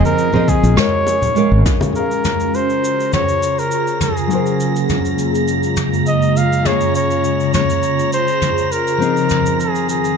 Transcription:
Already playing: nylon-string guitar F3 C4 G#4 D#5
0.05 muted trumpet A#4, high conga, cabasa
0.18 cabasa
0.33 nylon-string guitar F3 C4 G#4 D#5, high bongo, low conga
0.48 muted trumpet G#4, kick, high conga, cabasa
0.63 fretless electric bass A#1, high bongo, cabasa
0.76 nylon-string guitar G#3 F#4 A#4 C#5, muted trumpet C#5, cross-stick, mid tom, cabasa
1.07 high bongo, cabasa
1.22 low conga, cabasa
1.35 nylon-string guitar G#3 F#4 A#4 F5, high bongo, cabasa
1.52 fretless electric bass G#1
1.66 kick, mid tom, cabasa
1.81 high bongo, high conga, low conga, cabasa
1.93 ambient pad C#3 F4 G#4, nylon-string guitar C#4 G#4, muted trumpet A#4, synth texture A#5 A#6, cabasa
1.99 nylon-string guitar F5
2.11 cabasa
2.25 mid tom, cabasa
2.40 cabasa
2.54 muted trumpet C5, cabasa
2.70 cabasa
2.84 cabasa
3.00 cabasa
3.13 muted trumpet C#5, mid tom, cabasa
3.29 cabasa
3.43 cabasa
3.59 muted trumpet A#4, cabasa
3.71 cabasa
3.87 cabasa
4.01 muted trumpet G#4, mid tom, cabasa
4.17 cabasa
4.27 ambient pad F#2 G#3 A#3 F4, nylon-string guitar F#3 C#4 G#4, cabasa
4.32 nylon-string guitar A#4 C5
4.46 cabasa
4.60 cabasa
4.76 cabasa
4.89 mid tom, cabasa
5.05 cabasa
5.18 cabasa
5.35 cabasa
5.48 cabasa
5.63 cabasa
5.77 mid tom, cabasa
5.94 cabasa
6.06 muted trumpet D#5, cabasa
6.22 cabasa
6.37 muted trumpet F5, cabasa
6.53 cabasa
6.62 nylon-string guitar C#4 G#4, muted trumpet C#5, mid tom, cabasa
6.69 nylon-string guitar F5
6.81 cabasa
6.95 muted trumpet C#5, cabasa
7.11 cabasa
7.24 cabasa
7.40 cabasa
7.54 muted trumpet C#5, mid tom, cabasa
7.70 cabasa
7.83 cabasa
7.99 cabasa
8.13 muted trumpet C5, cabasa
8.28 cabasa
8.42 mid tom, cabasa
8.58 cabasa
8.72 muted trumpet A#4, cabasa
8.87 cabasa
8.98 ambient pad F2 D#3 G#4, nylon-string guitar F3 C4
9.02 nylon-string guitar D#4 G#4, cabasa
9.17 cabasa
9.29 mid tom, cabasa
9.46 cabasa
9.60 muted trumpet G#4, cabasa
9.75 cabasa
9.89 muted trumpet G#4, cabasa
10.04 cabasa

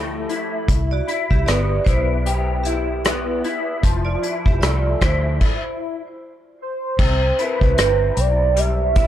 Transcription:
Already playing: fingered electric bass D2, clean electric guitar F3 A3 E4 G4
0.29 clean electric guitar E4, closed hi-hat
0.68 fingered electric bass C2, kick, closed hi-hat
0.91 vibraphone F#4 D5
1.08 clean electric guitar E4, closed hi-hat
1.30 fingered electric bass C2, vibraphone G4 E5, kick
1.46 fingered electric bass G1, clean electric guitar B3, vibraphone G4 D5, cross-stick, closed hi-hat
1.84 fingered electric bass B1, vibraphone E4 C5, clean electric guitar E4, kick, closed hi-hat
2.26 clean electric guitar G4, closed hi-hat
2.63 clean electric guitar E4, vibraphone G4 E5, closed hi-hat
3.05 clean electric guitar B3, cross-stick, closed hi-hat
3.44 clean electric guitar E4, closed hi-hat
3.83 fingered electric bass F1, clean electric guitar F3, kick, closed hi-hat
4.05 vibraphone F4 D5
4.22 clean electric guitar E4, closed hi-hat
4.46 fingered electric bass F1, vibraphone G4 E5, kick
4.61 fingered electric bass C2, clean electric guitar A3, vibraphone F4 D5, cross-stick, closed hi-hat
5.01 fingered electric bass D2, clean electric guitar E4, vibraphone E4 C5, kick, cross-stick, closed hi-hat
5.41 kick, crash
6.62 soft synth lead C5
6.99 fingered electric bass C2, clean electric guitar C3, kick, crash
7.39 clean electric guitar E4, soft synth lead B4, closed hi-hat
7.61 fingered electric bass C2, kick
7.77 fingered electric bass G1, clean electric guitar C4, cross-stick, closed hi-hat
8.17 fingered electric bass B1, soft synth lead D5, closed hi-hat
8.56 clean electric guitar G3, soft synth lead E5, closed hi-hat
8.96 clean electric guitar E4, kick, closed hi-hat

